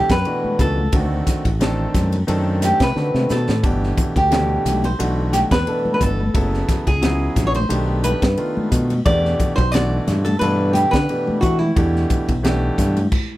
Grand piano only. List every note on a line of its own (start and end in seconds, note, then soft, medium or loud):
0.00 0.11 B2 medium
0.00 0.11 E3 medium
0.00 0.11 A3 medium
0.00 0.12 D4 medium
0.00 0.12 A4 medium
0.25 0.79 B2 medium
0.25 0.79 E3 medium
0.25 0.79 A3 medium
0.25 0.80 D4 medium
0.25 0.80 F#4 medium
0.93 1.47 D#3 medium
0.93 1.47 A3 medium
0.93 1.47 C4 medium
0.93 1.47 D4 medium
0.93 1.48 F#4 medium
1.60 2.14 D#3 medium
1.60 2.15 A3 medium
1.60 2.15 C4 medium
1.60 2.15 D4 medium
1.60 2.15 A4 loud
2.27 2.82 D#3 medium
2.27 2.82 A3 medium
2.27 2.82 C4 medium
2.27 2.82 D4 medium
2.27 2.82 A4 loud
2.95 3.50 D#3 medium
2.95 3.50 A3 medium
2.95 3.50 C4 medium
2.95 3.50 D4 medium
2.95 3.50 F#4 medium
3.63 4.17 B2 medium
3.63 4.17 E3 medium
3.63 4.17 A3 medium
3.63 4.18 D4 medium
3.63 4.18 G4 medium
4.30 4.85 B2 medium
4.30 4.85 E3 medium
4.30 4.85 A3 medium
4.30 4.85 D4 medium
4.30 4.86 G4 medium
4.99 5.53 B2 medium
4.99 5.53 E3 medium
4.99 5.53 A3 medium
4.99 5.53 D4 medium
4.99 5.53 F#4 medium
5.67 6.20 B2 medium
5.67 6.21 E3 medium
5.67 6.21 A3 medium
5.67 6.21 D4 medium
5.67 6.21 A4 medium
6.34 6.88 C#3 medium
6.34 6.88 F#3 medium
6.34 6.88 B3 medium
6.34 6.88 E4 medium
6.34 6.89 A4 medium
7.01 7.55 C#3 medium
7.01 7.56 F#3 medium
7.01 7.56 B3 medium
7.01 7.56 E4 medium
7.01 7.56 G#4 medium
7.69 8.23 D#3 medium
7.69 8.23 A3 medium
7.69 8.23 B3 medium
7.69 8.24 D4 medium
7.69 8.24 G4 medium
8.37 8.91 D#3 medium
8.37 8.91 A3 medium
8.37 8.91 B3 medium
8.37 8.92 D4 medium
8.37 8.92 F4 medium
9.05 9.59 B2 medium
9.05 9.59 E3 medium
9.05 9.59 A3 medium
9.05 9.60 D4 medium
9.05 9.60 G4 medium
9.73 10.27 B2 medium
9.73 10.27 E3 medium
9.73 10.27 A3 medium
9.73 10.28 D4 medium
9.73 10.28 F#4 medium
10.41 10.95 B2 medium
10.41 10.95 E3 medium
10.41 10.95 A3 medium
10.41 10.95 D4 medium
10.41 10.96 A4 medium
11.09 11.62 B2 medium
11.09 11.63 E3 medium
11.09 11.63 A3 medium
11.09 11.63 D4 medium
11.09 11.63 G4 medium
11.76 12.30 B2 medium
11.76 12.30 E3 medium
11.76 12.30 A3 medium
11.76 12.31 D4 medium
11.76 12.31 G4 medium
12.43 12.97 B2 medium
12.43 12.98 E3 medium
12.43 12.98 A3 medium
12.43 12.98 D4 medium
12.43 12.98 G4 loud